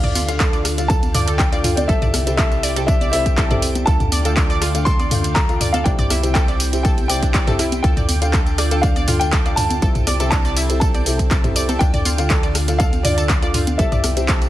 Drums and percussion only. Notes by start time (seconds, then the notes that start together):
0.04 closed hi-hat, mid tom, tambourine
0.15 open hi-hat, tambourine, high conga
0.29 closed hi-hat, tambourine
0.40 kick, clap, closed hi-hat, tambourine
0.53 closed hi-hat, tambourine
0.65 cross-stick, open hi-hat, tambourine
0.78 closed hi-hat, tambourine
0.90 kick, closed hi-hat, tambourine
1.03 closed hi-hat, tambourine, high conga
1.15 mid tom, open hi-hat, tambourine
1.28 closed hi-hat, tambourine
1.39 kick, clap, closed hi-hat, tambourine
1.52 closed hi-hat, tambourine
1.64 mid tom, open hi-hat, tambourine
1.77 closed hi-hat, tambourine, high conga
1.89 kick, closed hi-hat, tambourine
2.02 closed hi-hat, mid tom, tambourine
2.14 cross-stick, open hi-hat, tambourine, high conga
2.27 closed hi-hat, tambourine
2.38 kick, clap, closed hi-hat, tambourine
2.52 closed hi-hat, tambourine
2.63 open hi-hat, tambourine
2.76 closed hi-hat, tambourine
2.88 kick, closed hi-hat, tambourine
3.01 closed hi-hat, tambourine, high conga
3.13 open hi-hat, tambourine
3.26 kick, closed hi-hat, tambourine
3.37 kick, clap, closed hi-hat, tambourine
3.51 closed hi-hat, mid tom, tambourine
3.62 open hi-hat, tambourine
3.75 closed hi-hat, tambourine, high conga
3.87 kick, closed hi-hat, tambourine
4.00 closed hi-hat, mid tom, tambourine
4.12 open hi-hat, tambourine, high conga
4.25 closed hi-hat, tambourine
4.37 kick, clap, closed hi-hat, tambourine
4.50 closed hi-hat, tambourine
4.62 cross-stick, open hi-hat, tambourine
4.75 closed hi-hat, tambourine
4.86 kick, closed hi-hat, tambourine
4.99 closed hi-hat, tambourine, high conga
5.11 mid tom, open hi-hat, tambourine
5.24 closed hi-hat, tambourine
5.36 kick, clap, closed hi-hat, tambourine
5.49 closed hi-hat, tambourine
5.61 mid tom, open hi-hat, tambourine
5.74 closed hi-hat, tambourine, high conga
5.86 kick, closed hi-hat, tambourine
5.99 closed hi-hat, mid tom, tambourine
6.10 cross-stick, open hi-hat, tambourine, high conga
6.23 closed hi-hat, tambourine
6.35 kick, clap, closed hi-hat, tambourine
6.48 closed hi-hat, tambourine
6.60 open hi-hat, tambourine
6.73 closed hi-hat, tambourine
6.85 kick, closed hi-hat, tambourine
6.98 closed hi-hat, tambourine, high conga
7.10 open hi-hat, tambourine
7.23 kick, closed hi-hat, tambourine
7.34 kick, clap, closed hi-hat, tambourine
7.47 closed hi-hat, mid tom, tambourine
7.59 cross-stick, open hi-hat, tambourine
7.72 closed hi-hat, tambourine, high conga
7.84 kick, closed hi-hat, tambourine
7.97 closed hi-hat, mid tom, tambourine
8.09 open hi-hat, tambourine, high conga
8.22 closed hi-hat, tambourine
8.33 kick, clap, closed hi-hat, tambourine
8.47 closed hi-hat, tambourine
8.58 cross-stick, open hi-hat, tambourine
8.71 closed hi-hat, tambourine
8.83 kick, closed hi-hat, tambourine
8.96 closed hi-hat, tambourine, high conga
9.08 mid tom, open hi-hat, tambourine
9.21 closed hi-hat, tambourine
9.32 kick, clap, closed hi-hat, tambourine
9.46 closed hi-hat, tambourine
9.57 mid tom, open hi-hat, tambourine
9.70 closed hi-hat, tambourine, high conga
9.82 kick, closed hi-hat, tambourine
9.95 closed hi-hat, mid tom, tambourine
10.07 cross-stick, open hi-hat, tambourine, high conga
10.20 closed hi-hat, tambourine
10.32 kick, clap, closed hi-hat, tambourine
10.45 closed hi-hat, tambourine
10.57 open hi-hat, tambourine
10.70 closed hi-hat, tambourine
10.81 kick, closed hi-hat, tambourine
10.94 closed hi-hat, tambourine, high conga
11.06 open hi-hat, tambourine
11.19 kick, closed hi-hat, tambourine
11.31 kick, clap, closed hi-hat, tambourine
11.44 closed hi-hat, mid tom, tambourine
11.56 open hi-hat, tambourine
11.69 closed hi-hat, tambourine, high conga
11.81 kick, closed hi-hat, tambourine
11.94 closed hi-hat, mid tom, tambourine
12.05 open hi-hat, tambourine, high conga
12.18 closed hi-hat, tambourine
12.30 kick, clap, closed hi-hat, tambourine
12.43 closed hi-hat, tambourine
12.55 cross-stick, open hi-hat, tambourine
12.68 closed hi-hat, tambourine
12.80 kick, closed hi-hat, tambourine
12.93 closed hi-hat, tambourine, high conga
13.05 mid tom, open hi-hat, tambourine
13.18 closed hi-hat, tambourine
13.29 kick, clap, closed hi-hat, tambourine
13.43 closed hi-hat, tambourine
13.54 mid tom, open hi-hat, tambourine
13.67 closed hi-hat, tambourine, high conga
13.79 kick, closed hi-hat, tambourine
13.92 closed hi-hat, mid tom, tambourine
14.04 cross-stick, open hi-hat, tambourine, high conga
14.17 closed hi-hat, tambourine
14.28 kick, clap, closed hi-hat, tambourine
14.42 closed hi-hat, tambourine